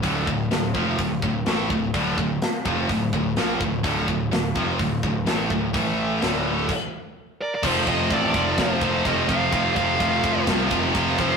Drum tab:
CC |--------|--------|--------|----x---|
RD |--------|--------|--------|--------|
HH |o-o-o-o-|o-o-o-o-|o-o-o-o-|o-o-----|
SD |--o---o-|--o---o-|--o---o-|--o-----|
BD |oo-ooo-o|oo-ooo-o|oo-ooo-o|o---o---|

CC |x-------|--------|
RD |-xxxxxxx|xxxxxxxx|
HH |--------|--------|
SD |----o---|----o---|
BD |oooooooo|oooooooo|